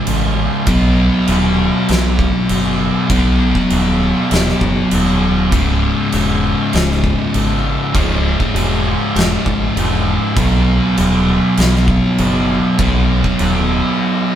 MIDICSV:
0, 0, Header, 1, 4, 480
1, 0, Start_track
1, 0, Tempo, 606673
1, 528, Time_signature, 4, 2, 24, 8
1, 11355, End_track
2, 0, Start_track
2, 0, Title_t, "Distorted electric guitar"
2, 0, Program_c, 0, 30
2, 0, Note_on_c, 0, 37, 90
2, 0, Note_on_c, 0, 44, 93
2, 0, Note_on_c, 0, 49, 98
2, 511, Note_off_c, 0, 37, 0
2, 515, Note_off_c, 0, 44, 0
2, 519, Note_off_c, 0, 49, 0
2, 534, Note_on_c, 0, 47, 80
2, 539, Note_on_c, 0, 54, 96
2, 549, Note_on_c, 0, 59, 99
2, 2436, Note_off_c, 0, 47, 0
2, 2438, Note_off_c, 0, 54, 0
2, 2443, Note_off_c, 0, 59, 0
2, 2449, Note_on_c, 0, 47, 87
2, 2461, Note_on_c, 0, 54, 92
2, 2468, Note_on_c, 0, 59, 94
2, 4353, Note_off_c, 0, 47, 0
2, 4359, Note_off_c, 0, 54, 0
2, 4362, Note_off_c, 0, 59, 0
2, 4366, Note_on_c, 0, 37, 83
2, 4375, Note_on_c, 0, 44, 87
2, 4383, Note_on_c, 0, 49, 102
2, 6270, Note_off_c, 0, 37, 0
2, 6275, Note_off_c, 0, 44, 0
2, 6279, Note_off_c, 0, 49, 0
2, 6283, Note_on_c, 0, 37, 83
2, 6293, Note_on_c, 0, 44, 103
2, 6297, Note_on_c, 0, 49, 103
2, 8189, Note_off_c, 0, 37, 0
2, 8194, Note_off_c, 0, 44, 0
2, 8196, Note_off_c, 0, 49, 0
2, 8200, Note_on_c, 0, 47, 84
2, 8208, Note_on_c, 0, 54, 95
2, 8216, Note_on_c, 0, 59, 89
2, 10107, Note_off_c, 0, 47, 0
2, 10111, Note_off_c, 0, 54, 0
2, 10116, Note_off_c, 0, 59, 0
2, 10118, Note_on_c, 0, 47, 90
2, 10125, Note_on_c, 0, 54, 85
2, 10135, Note_on_c, 0, 59, 93
2, 11355, Note_off_c, 0, 47, 0
2, 11355, Note_off_c, 0, 54, 0
2, 11355, Note_off_c, 0, 59, 0
2, 11355, End_track
3, 0, Start_track
3, 0, Title_t, "Fingered electric bass"
3, 0, Program_c, 1, 33
3, 58, Note_on_c, 1, 33, 87
3, 370, Note_off_c, 1, 33, 0
3, 533, Note_on_c, 1, 35, 86
3, 847, Note_off_c, 1, 35, 0
3, 1016, Note_on_c, 1, 27, 92
3, 1329, Note_off_c, 1, 27, 0
3, 1498, Note_on_c, 1, 35, 92
3, 1810, Note_off_c, 1, 35, 0
3, 1976, Note_on_c, 1, 30, 89
3, 2289, Note_off_c, 1, 30, 0
3, 2452, Note_on_c, 1, 35, 89
3, 2766, Note_off_c, 1, 35, 0
3, 2935, Note_on_c, 1, 27, 88
3, 3248, Note_off_c, 1, 27, 0
3, 3413, Note_on_c, 1, 27, 86
3, 3569, Note_off_c, 1, 27, 0
3, 3649, Note_on_c, 1, 30, 82
3, 3806, Note_off_c, 1, 30, 0
3, 3895, Note_on_c, 1, 27, 89
3, 4372, Note_off_c, 1, 27, 0
3, 4372, Note_on_c, 1, 25, 90
3, 4685, Note_off_c, 1, 25, 0
3, 4854, Note_on_c, 1, 28, 91
3, 5167, Note_off_c, 1, 28, 0
3, 5332, Note_on_c, 1, 25, 91
3, 5645, Note_off_c, 1, 25, 0
3, 5813, Note_on_c, 1, 32, 93
3, 6126, Note_off_c, 1, 32, 0
3, 6289, Note_on_c, 1, 25, 94
3, 6603, Note_off_c, 1, 25, 0
3, 6760, Note_on_c, 1, 28, 90
3, 7077, Note_off_c, 1, 28, 0
3, 7242, Note_on_c, 1, 28, 97
3, 7401, Note_off_c, 1, 28, 0
3, 7486, Note_on_c, 1, 32, 90
3, 7643, Note_off_c, 1, 32, 0
3, 7726, Note_on_c, 1, 28, 99
3, 8041, Note_off_c, 1, 28, 0
3, 8204, Note_on_c, 1, 35, 93
3, 8520, Note_off_c, 1, 35, 0
3, 8685, Note_on_c, 1, 27, 99
3, 9000, Note_off_c, 1, 27, 0
3, 9162, Note_on_c, 1, 35, 96
3, 9478, Note_off_c, 1, 35, 0
3, 9645, Note_on_c, 1, 30, 92
3, 9961, Note_off_c, 1, 30, 0
3, 10121, Note_on_c, 1, 35, 90
3, 10438, Note_off_c, 1, 35, 0
3, 10602, Note_on_c, 1, 27, 90
3, 10918, Note_off_c, 1, 27, 0
3, 11355, End_track
4, 0, Start_track
4, 0, Title_t, "Drums"
4, 52, Note_on_c, 9, 49, 60
4, 131, Note_off_c, 9, 49, 0
4, 526, Note_on_c, 9, 49, 55
4, 530, Note_on_c, 9, 36, 119
4, 605, Note_off_c, 9, 49, 0
4, 610, Note_off_c, 9, 36, 0
4, 1009, Note_on_c, 9, 49, 54
4, 1088, Note_off_c, 9, 49, 0
4, 1492, Note_on_c, 9, 49, 54
4, 1514, Note_on_c, 9, 38, 100
4, 1571, Note_off_c, 9, 49, 0
4, 1593, Note_off_c, 9, 38, 0
4, 1732, Note_on_c, 9, 36, 82
4, 1811, Note_off_c, 9, 36, 0
4, 1972, Note_on_c, 9, 49, 59
4, 2051, Note_off_c, 9, 49, 0
4, 2449, Note_on_c, 9, 49, 59
4, 2451, Note_on_c, 9, 36, 117
4, 2528, Note_off_c, 9, 49, 0
4, 2530, Note_off_c, 9, 36, 0
4, 2810, Note_on_c, 9, 36, 76
4, 2889, Note_off_c, 9, 36, 0
4, 2930, Note_on_c, 9, 49, 58
4, 3009, Note_off_c, 9, 49, 0
4, 3410, Note_on_c, 9, 49, 60
4, 3432, Note_on_c, 9, 38, 108
4, 3489, Note_off_c, 9, 49, 0
4, 3511, Note_off_c, 9, 38, 0
4, 3548, Note_on_c, 9, 38, 31
4, 3627, Note_off_c, 9, 38, 0
4, 3649, Note_on_c, 9, 36, 87
4, 3728, Note_off_c, 9, 36, 0
4, 3886, Note_on_c, 9, 49, 62
4, 3965, Note_off_c, 9, 49, 0
4, 4368, Note_on_c, 9, 49, 63
4, 4370, Note_on_c, 9, 36, 110
4, 4447, Note_off_c, 9, 49, 0
4, 4449, Note_off_c, 9, 36, 0
4, 4845, Note_on_c, 9, 49, 52
4, 4924, Note_off_c, 9, 49, 0
4, 5324, Note_on_c, 9, 49, 51
4, 5346, Note_on_c, 9, 38, 111
4, 5403, Note_off_c, 9, 49, 0
4, 5426, Note_off_c, 9, 38, 0
4, 5469, Note_on_c, 9, 38, 32
4, 5549, Note_off_c, 9, 38, 0
4, 5568, Note_on_c, 9, 36, 82
4, 5647, Note_off_c, 9, 36, 0
4, 5808, Note_on_c, 9, 49, 51
4, 5887, Note_off_c, 9, 49, 0
4, 6287, Note_on_c, 9, 36, 115
4, 6289, Note_on_c, 9, 49, 57
4, 6366, Note_off_c, 9, 36, 0
4, 6368, Note_off_c, 9, 49, 0
4, 6647, Note_on_c, 9, 36, 78
4, 6726, Note_off_c, 9, 36, 0
4, 6771, Note_on_c, 9, 49, 58
4, 6850, Note_off_c, 9, 49, 0
4, 7249, Note_on_c, 9, 49, 58
4, 7271, Note_on_c, 9, 38, 109
4, 7328, Note_off_c, 9, 49, 0
4, 7350, Note_off_c, 9, 38, 0
4, 7485, Note_on_c, 9, 36, 91
4, 7564, Note_off_c, 9, 36, 0
4, 7729, Note_on_c, 9, 49, 62
4, 7808, Note_off_c, 9, 49, 0
4, 8201, Note_on_c, 9, 49, 63
4, 8202, Note_on_c, 9, 36, 121
4, 8280, Note_off_c, 9, 49, 0
4, 8281, Note_off_c, 9, 36, 0
4, 8683, Note_on_c, 9, 49, 56
4, 8762, Note_off_c, 9, 49, 0
4, 9157, Note_on_c, 9, 49, 57
4, 9179, Note_on_c, 9, 38, 109
4, 9236, Note_off_c, 9, 49, 0
4, 9258, Note_off_c, 9, 38, 0
4, 9300, Note_on_c, 9, 38, 33
4, 9379, Note_off_c, 9, 38, 0
4, 9398, Note_on_c, 9, 36, 89
4, 9477, Note_off_c, 9, 36, 0
4, 9639, Note_on_c, 9, 49, 55
4, 9718, Note_off_c, 9, 49, 0
4, 10115, Note_on_c, 9, 49, 56
4, 10119, Note_on_c, 9, 36, 114
4, 10195, Note_off_c, 9, 49, 0
4, 10198, Note_off_c, 9, 36, 0
4, 10478, Note_on_c, 9, 36, 77
4, 10557, Note_off_c, 9, 36, 0
4, 10595, Note_on_c, 9, 49, 53
4, 10674, Note_off_c, 9, 49, 0
4, 11355, End_track
0, 0, End_of_file